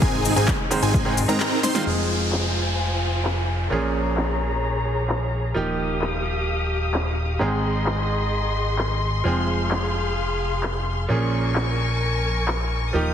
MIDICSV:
0, 0, Header, 1, 8, 480
1, 0, Start_track
1, 0, Key_signature, -4, "minor"
1, 0, Tempo, 461538
1, 20, Time_signature, 4, 2, 24, 8
1, 13664, End_track
2, 0, Start_track
2, 0, Title_t, "Digital synth lead"
2, 0, Program_c, 0, 84
2, 18, Note_on_c, 0, 80, 112
2, 350, Note_off_c, 0, 80, 0
2, 379, Note_on_c, 0, 80, 90
2, 567, Note_off_c, 0, 80, 0
2, 858, Note_on_c, 0, 80, 109
2, 1190, Note_off_c, 0, 80, 0
2, 1340, Note_on_c, 0, 82, 103
2, 1671, Note_off_c, 0, 82, 0
2, 1699, Note_on_c, 0, 84, 102
2, 1911, Note_off_c, 0, 84, 0
2, 13664, End_track
3, 0, Start_track
3, 0, Title_t, "String section"
3, 0, Program_c, 1, 48
3, 18, Note_on_c, 1, 56, 78
3, 18, Note_on_c, 1, 63, 94
3, 19, Note_on_c, 1, 48, 83
3, 1920, Note_off_c, 1, 48, 0
3, 1920, Note_off_c, 1, 56, 0
3, 1920, Note_off_c, 1, 63, 0
3, 1938, Note_on_c, 1, 72, 66
3, 1938, Note_on_c, 1, 80, 80
3, 1939, Note_on_c, 1, 65, 71
3, 3840, Note_off_c, 1, 65, 0
3, 3840, Note_off_c, 1, 72, 0
3, 3840, Note_off_c, 1, 80, 0
3, 3858, Note_on_c, 1, 68, 72
3, 3859, Note_on_c, 1, 73, 68
3, 3859, Note_on_c, 1, 82, 80
3, 5760, Note_off_c, 1, 68, 0
3, 5760, Note_off_c, 1, 73, 0
3, 5760, Note_off_c, 1, 82, 0
3, 5783, Note_on_c, 1, 77, 66
3, 5783, Note_on_c, 1, 87, 79
3, 5784, Note_on_c, 1, 67, 75
3, 7682, Note_off_c, 1, 77, 0
3, 7682, Note_off_c, 1, 87, 0
3, 7683, Note_off_c, 1, 67, 0
3, 7699, Note_on_c, 1, 68, 71
3, 7699, Note_on_c, 1, 75, 69
3, 7699, Note_on_c, 1, 84, 81
3, 9600, Note_off_c, 1, 68, 0
3, 9600, Note_off_c, 1, 75, 0
3, 9619, Note_on_c, 1, 68, 74
3, 9620, Note_on_c, 1, 77, 66
3, 11501, Note_off_c, 1, 84, 0
3, 11520, Note_off_c, 1, 68, 0
3, 11521, Note_off_c, 1, 77, 0
3, 11540, Note_on_c, 1, 70, 73
3, 11541, Note_on_c, 1, 80, 69
3, 11541, Note_on_c, 1, 85, 81
3, 13441, Note_off_c, 1, 70, 0
3, 13441, Note_off_c, 1, 80, 0
3, 13441, Note_off_c, 1, 85, 0
3, 13459, Note_on_c, 1, 67, 75
3, 13459, Note_on_c, 1, 77, 69
3, 13460, Note_on_c, 1, 87, 83
3, 13664, Note_off_c, 1, 67, 0
3, 13664, Note_off_c, 1, 77, 0
3, 13664, Note_off_c, 1, 87, 0
3, 13664, End_track
4, 0, Start_track
4, 0, Title_t, "Supersaw synth"
4, 0, Program_c, 2, 81
4, 19, Note_on_c, 2, 60, 103
4, 19, Note_on_c, 2, 63, 93
4, 19, Note_on_c, 2, 68, 116
4, 350, Note_off_c, 2, 60, 0
4, 350, Note_off_c, 2, 63, 0
4, 350, Note_off_c, 2, 68, 0
4, 379, Note_on_c, 2, 60, 79
4, 379, Note_on_c, 2, 63, 70
4, 379, Note_on_c, 2, 68, 88
4, 567, Note_off_c, 2, 60, 0
4, 567, Note_off_c, 2, 63, 0
4, 567, Note_off_c, 2, 68, 0
4, 857, Note_on_c, 2, 68, 111
4, 858, Note_on_c, 2, 60, 104
4, 858, Note_on_c, 2, 63, 90
4, 1190, Note_off_c, 2, 60, 0
4, 1190, Note_off_c, 2, 63, 0
4, 1190, Note_off_c, 2, 68, 0
4, 1338, Note_on_c, 2, 60, 92
4, 1338, Note_on_c, 2, 63, 86
4, 1338, Note_on_c, 2, 70, 101
4, 1670, Note_off_c, 2, 60, 0
4, 1670, Note_off_c, 2, 63, 0
4, 1670, Note_off_c, 2, 70, 0
4, 1698, Note_on_c, 2, 60, 90
4, 1698, Note_on_c, 2, 63, 86
4, 1698, Note_on_c, 2, 72, 100
4, 1910, Note_off_c, 2, 60, 0
4, 1910, Note_off_c, 2, 63, 0
4, 1910, Note_off_c, 2, 72, 0
4, 13664, End_track
5, 0, Start_track
5, 0, Title_t, "Grand piano"
5, 0, Program_c, 3, 0
5, 12, Note_on_c, 3, 44, 75
5, 16, Note_on_c, 3, 51, 71
5, 18, Note_on_c, 3, 56, 69
5, 21, Note_on_c, 3, 60, 73
5, 24, Note_on_c, 3, 68, 84
5, 146, Note_off_c, 3, 44, 0
5, 148, Note_off_c, 3, 51, 0
5, 149, Note_off_c, 3, 56, 0
5, 151, Note_off_c, 3, 60, 0
5, 152, Note_off_c, 3, 68, 0
5, 371, Note_on_c, 3, 44, 76
5, 375, Note_on_c, 3, 51, 70
5, 378, Note_on_c, 3, 56, 72
5, 382, Note_on_c, 3, 60, 72
5, 384, Note_on_c, 3, 68, 89
5, 584, Note_off_c, 3, 44, 0
5, 585, Note_off_c, 3, 51, 0
5, 587, Note_off_c, 3, 56, 0
5, 589, Note_off_c, 3, 60, 0
5, 590, Note_off_c, 3, 68, 0
5, 731, Note_on_c, 3, 44, 101
5, 734, Note_on_c, 3, 51, 92
5, 738, Note_on_c, 3, 56, 92
5, 741, Note_on_c, 3, 60, 92
5, 744, Note_on_c, 3, 72, 109
5, 1067, Note_off_c, 3, 44, 0
5, 1068, Note_off_c, 3, 51, 0
5, 1070, Note_off_c, 3, 56, 0
5, 1072, Note_off_c, 3, 60, 0
5, 1073, Note_off_c, 3, 72, 0
5, 1091, Note_on_c, 3, 44, 92
5, 1094, Note_on_c, 3, 51, 85
5, 1097, Note_on_c, 3, 56, 90
5, 1100, Note_on_c, 3, 60, 87
5, 1103, Note_on_c, 3, 68, 105
5, 1225, Note_off_c, 3, 44, 0
5, 1227, Note_off_c, 3, 51, 0
5, 1229, Note_off_c, 3, 56, 0
5, 1230, Note_off_c, 3, 60, 0
5, 1232, Note_off_c, 3, 68, 0
5, 1331, Note_on_c, 3, 44, 92
5, 1334, Note_on_c, 3, 51, 82
5, 1337, Note_on_c, 3, 56, 85
5, 1340, Note_on_c, 3, 60, 83
5, 1343, Note_on_c, 3, 68, 102
5, 1465, Note_off_c, 3, 44, 0
5, 1467, Note_off_c, 3, 51, 0
5, 1468, Note_off_c, 3, 56, 0
5, 1470, Note_off_c, 3, 60, 0
5, 1471, Note_off_c, 3, 68, 0
5, 1813, Note_on_c, 3, 51, 94
5, 1818, Note_on_c, 3, 56, 85
5, 1821, Note_on_c, 3, 60, 87
5, 1825, Note_on_c, 3, 65, 105
5, 1918, Note_off_c, 3, 51, 0
5, 1918, Note_off_c, 3, 56, 0
5, 1923, Note_off_c, 3, 60, 0
5, 1925, Note_off_c, 3, 65, 0
5, 1926, Note_on_c, 3, 53, 70
5, 1933, Note_on_c, 3, 56, 65
5, 1942, Note_on_c, 3, 60, 63
5, 1951, Note_on_c, 3, 68, 78
5, 3824, Note_off_c, 3, 53, 0
5, 3828, Note_off_c, 3, 56, 0
5, 3832, Note_off_c, 3, 60, 0
5, 3836, Note_off_c, 3, 68, 0
5, 3848, Note_on_c, 3, 46, 72
5, 3854, Note_on_c, 3, 53, 65
5, 3861, Note_on_c, 3, 58, 66
5, 3867, Note_on_c, 3, 61, 66
5, 3873, Note_on_c, 3, 68, 78
5, 5745, Note_off_c, 3, 46, 0
5, 5748, Note_off_c, 3, 53, 0
5, 5751, Note_off_c, 3, 58, 0
5, 5755, Note_off_c, 3, 61, 0
5, 5758, Note_off_c, 3, 68, 0
5, 5766, Note_on_c, 3, 53, 71
5, 5775, Note_on_c, 3, 58, 68
5, 5783, Note_on_c, 3, 63, 65
5, 5792, Note_on_c, 3, 67, 79
5, 7664, Note_off_c, 3, 53, 0
5, 7669, Note_off_c, 3, 58, 0
5, 7673, Note_off_c, 3, 63, 0
5, 7677, Note_off_c, 3, 67, 0
5, 7686, Note_on_c, 3, 44, 73
5, 7693, Note_on_c, 3, 51, 66
5, 7699, Note_on_c, 3, 56, 67
5, 7705, Note_on_c, 3, 60, 64
5, 7712, Note_on_c, 3, 68, 81
5, 9584, Note_off_c, 3, 44, 0
5, 9588, Note_off_c, 3, 51, 0
5, 9591, Note_off_c, 3, 56, 0
5, 9594, Note_off_c, 3, 60, 0
5, 9597, Note_off_c, 3, 68, 0
5, 9607, Note_on_c, 3, 53, 70
5, 9617, Note_on_c, 3, 56, 66
5, 9624, Note_on_c, 3, 60, 66
5, 9632, Note_on_c, 3, 68, 79
5, 11505, Note_off_c, 3, 53, 0
5, 11509, Note_off_c, 3, 56, 0
5, 11513, Note_off_c, 3, 60, 0
5, 11517, Note_off_c, 3, 68, 0
5, 11528, Note_on_c, 3, 46, 73
5, 11534, Note_on_c, 3, 53, 67
5, 11540, Note_on_c, 3, 58, 66
5, 11546, Note_on_c, 3, 61, 66
5, 11553, Note_on_c, 3, 68, 79
5, 13425, Note_off_c, 3, 46, 0
5, 13428, Note_off_c, 3, 53, 0
5, 13431, Note_off_c, 3, 58, 0
5, 13434, Note_off_c, 3, 61, 0
5, 13438, Note_off_c, 3, 68, 0
5, 13447, Note_on_c, 3, 53, 74
5, 13455, Note_on_c, 3, 58, 66
5, 13463, Note_on_c, 3, 63, 68
5, 13472, Note_on_c, 3, 67, 81
5, 13664, Note_off_c, 3, 53, 0
5, 13664, Note_off_c, 3, 58, 0
5, 13664, Note_off_c, 3, 63, 0
5, 13664, Note_off_c, 3, 67, 0
5, 13664, End_track
6, 0, Start_track
6, 0, Title_t, "Analog synth bass"
6, 0, Program_c, 4, 38
6, 19, Note_on_c, 4, 32, 98
6, 355, Note_off_c, 4, 32, 0
6, 378, Note_on_c, 4, 32, 98
6, 543, Note_off_c, 4, 32, 0
6, 859, Note_on_c, 4, 32, 99
6, 1315, Note_off_c, 4, 32, 0
6, 1338, Note_on_c, 4, 44, 97
6, 1459, Note_off_c, 4, 44, 0
6, 1939, Note_on_c, 4, 29, 85
6, 3835, Note_off_c, 4, 29, 0
6, 3860, Note_on_c, 4, 34, 83
6, 5756, Note_off_c, 4, 34, 0
6, 5780, Note_on_c, 4, 27, 85
6, 7676, Note_off_c, 4, 27, 0
6, 7699, Note_on_c, 4, 32, 88
6, 9595, Note_off_c, 4, 32, 0
6, 9619, Note_on_c, 4, 29, 85
6, 11515, Note_off_c, 4, 29, 0
6, 11540, Note_on_c, 4, 34, 84
6, 13436, Note_off_c, 4, 34, 0
6, 13460, Note_on_c, 4, 27, 88
6, 13664, Note_off_c, 4, 27, 0
6, 13664, End_track
7, 0, Start_track
7, 0, Title_t, "Downlifter"
7, 0, Program_c, 5, 103
7, 1939, Note_on_c, 5, 60, 67
7, 5779, Note_off_c, 5, 60, 0
7, 13664, End_track
8, 0, Start_track
8, 0, Title_t, "Drums"
8, 19, Note_on_c, 9, 36, 118
8, 23, Note_on_c, 9, 69, 36
8, 123, Note_off_c, 9, 36, 0
8, 127, Note_off_c, 9, 69, 0
8, 259, Note_on_c, 9, 46, 107
8, 264, Note_on_c, 9, 69, 86
8, 363, Note_off_c, 9, 46, 0
8, 368, Note_off_c, 9, 69, 0
8, 384, Note_on_c, 9, 69, 48
8, 488, Note_off_c, 9, 69, 0
8, 497, Note_on_c, 9, 39, 127
8, 499, Note_on_c, 9, 36, 119
8, 504, Note_on_c, 9, 69, 38
8, 601, Note_off_c, 9, 39, 0
8, 603, Note_off_c, 9, 36, 0
8, 608, Note_off_c, 9, 69, 0
8, 739, Note_on_c, 9, 46, 105
8, 743, Note_on_c, 9, 69, 87
8, 843, Note_off_c, 9, 46, 0
8, 847, Note_off_c, 9, 69, 0
8, 864, Note_on_c, 9, 69, 48
8, 968, Note_off_c, 9, 69, 0
8, 979, Note_on_c, 9, 36, 123
8, 984, Note_on_c, 9, 69, 37
8, 1083, Note_off_c, 9, 36, 0
8, 1088, Note_off_c, 9, 69, 0
8, 1219, Note_on_c, 9, 46, 109
8, 1224, Note_on_c, 9, 69, 84
8, 1323, Note_off_c, 9, 46, 0
8, 1328, Note_off_c, 9, 69, 0
8, 1344, Note_on_c, 9, 69, 49
8, 1448, Note_off_c, 9, 69, 0
8, 1457, Note_on_c, 9, 39, 120
8, 1464, Note_on_c, 9, 69, 36
8, 1561, Note_off_c, 9, 39, 0
8, 1568, Note_off_c, 9, 69, 0
8, 1699, Note_on_c, 9, 38, 62
8, 1699, Note_on_c, 9, 46, 105
8, 1704, Note_on_c, 9, 69, 87
8, 1803, Note_off_c, 9, 38, 0
8, 1803, Note_off_c, 9, 46, 0
8, 1808, Note_off_c, 9, 69, 0
8, 1819, Note_on_c, 9, 38, 72
8, 1823, Note_on_c, 9, 69, 47
8, 1923, Note_off_c, 9, 38, 0
8, 1927, Note_off_c, 9, 69, 0
8, 2417, Note_on_c, 9, 39, 112
8, 2521, Note_off_c, 9, 39, 0
8, 3377, Note_on_c, 9, 39, 109
8, 3481, Note_off_c, 9, 39, 0
8, 4338, Note_on_c, 9, 39, 117
8, 4442, Note_off_c, 9, 39, 0
8, 5297, Note_on_c, 9, 39, 113
8, 5401, Note_off_c, 9, 39, 0
8, 6257, Note_on_c, 9, 39, 116
8, 6361, Note_off_c, 9, 39, 0
8, 7217, Note_on_c, 9, 39, 111
8, 7321, Note_off_c, 9, 39, 0
8, 8176, Note_on_c, 9, 39, 110
8, 8280, Note_off_c, 9, 39, 0
8, 9136, Note_on_c, 9, 39, 109
8, 9240, Note_off_c, 9, 39, 0
8, 10097, Note_on_c, 9, 39, 107
8, 10201, Note_off_c, 9, 39, 0
8, 11057, Note_on_c, 9, 39, 110
8, 11161, Note_off_c, 9, 39, 0
8, 12017, Note_on_c, 9, 39, 107
8, 12121, Note_off_c, 9, 39, 0
8, 12977, Note_on_c, 9, 39, 108
8, 13081, Note_off_c, 9, 39, 0
8, 13664, End_track
0, 0, End_of_file